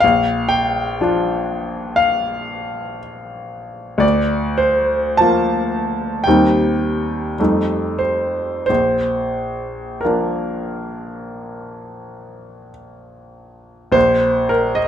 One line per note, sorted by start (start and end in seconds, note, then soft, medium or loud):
0.00 0.99 A#1 medium
0.00 0.50 F5 medium
0.49 1.98 G5 medium
1.01 3.98 F3 soft
1.01 3.98 D4 soft
1.01 3.99 F4 soft
1.96 2.99 F5 medium
3.98 5.13 D2 medium
3.98 4.59 D5 medium
4.58 5.18 C5 medium
5.17 6.22 F3 soft
5.17 6.22 A#3 soft
5.17 6.23 F4 soft
5.17 6.25 A5 medium
6.24 7.36 D#2 soft
6.24 7.35 G3 soft
6.24 7.35 C4 soft
6.24 8.00 G5 medium
6.28 7.36 D#4 soft
7.39 8.65 F2 soft
7.39 8.65 G3 soft
7.39 8.65 A3 soft
7.39 8.65 D#4 soft
7.99 8.65 C5 medium
8.66 10.00 A#1 soft
8.66 10.02 C5 medium
10.01 13.92 F3 soft
10.01 13.92 A#3 soft
10.01 12.69 A#4 soft
10.05 13.92 D4 soft
13.92 14.88 A#1 medium
13.92 14.49 C5 medium
14.49 14.78 A#4 medium
14.75 14.88 D#5 medium